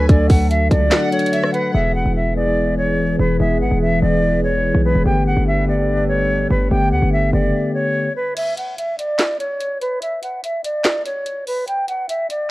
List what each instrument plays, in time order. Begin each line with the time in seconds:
Already playing: ambient pad D3 D4 F#4 A4, tine electric piano F#3 A3 D4 A4
0.08 808-style bass D2, tine electric piano F#3 A3 D4 A4, flute D5, kick, closed hi-hat
0.30 808-style bass D2, flute F#5, kick, open hi-hat
0.50 flute E5, closed hi-hat
0.71 808-style bass C#2, flute D5, kick, closed hi-hat
0.92 violin section F#5, snare, clap, closed hi-hat
1.11 tine electric piano F#3 A3 D4 A4, flute C#5, closed hi-hat
1.19 closed hi-hat
1.26 closed hi-hat
1.33 violin section E5, closed hi-hat
1.44 cross-stick
1.53 flute B4, violin section F#5, closed hi-hat
1.74 808-style bass E1, tine electric piano E3 G#3 B3 G#4, ambient pad E3 E4 G#4 B4, flute E5
1.95 flute F#5
2.06 808-style bass E1
2.16 flute E5
2.36 tine electric piano E3 G#3 B3 G#4, flute D5
2.46 tine electric piano E3 G#3 B3 G#4
2.77 flute C#5
3.19 808-style bass E1, flute B4
3.39 808-style bass E1, tine electric piano E3 G#3 B3 G#4, flute E5
3.61 808-style bass G#1, flute F#5
3.71 808-style bass E1
3.82 flute E5
4.01 808-style bass E1, tine electric piano E3 G#3 B3 G#4, flute D5
4.44 flute C#5
4.75 808-style bass B1
4.84 tine electric piano E3 G#3 B3 G#4, flute B4
4.95 808-style bass E1
5.05 808-style bass G1, tine electric piano D3 A3 B3 G4, ambient pad G3 D4 A4 B4, flute G5
5.26 flute F#5
5.37 808-style bass G1
5.47 flute E5
5.67 tine electric piano D3 A3 B3 G4, flute D5
5.77 tine electric piano D3 A3 B3 G4
6.08 flute C#5
6.50 808-style bass G1, flute B4
6.70 808-style bass G1, tine electric piano D3 A3 B3 G4, flute G5
6.92 808-style bass D2, flute F#5
7.02 808-style bass G1
7.12 flute E5
7.33 808-style bass F#1, tine electric piano D3 A3 B3 G4, flute D5
7.74 flute C#5
8.16 flute B4
8.36 flute E5, closed hi-hat, crash
8.57 flute F#5, closed hi-hat
8.78 flute E5, closed hi-hat
8.98 flute D5, closed hi-hat
9.19 snare, clap, closed hi-hat
9.39 flute C#5, closed hi-hat
9.61 closed hi-hat
9.81 flute B4, closed hi-hat
10.02 flute E5, closed hi-hat
10.23 flute F#5, closed hi-hat
10.44 flute E5, closed hi-hat
10.64 flute D5, closed hi-hat
10.85 snare, clap, closed hi-hat
11.06 flute C#5, closed hi-hat
11.26 closed hi-hat
11.47 flute B4, open hi-hat
11.68 flute G5, closed hi-hat
11.88 flute F#5, closed hi-hat
12.09 flute E5, closed hi-hat
12.30 flute D5, closed hi-hat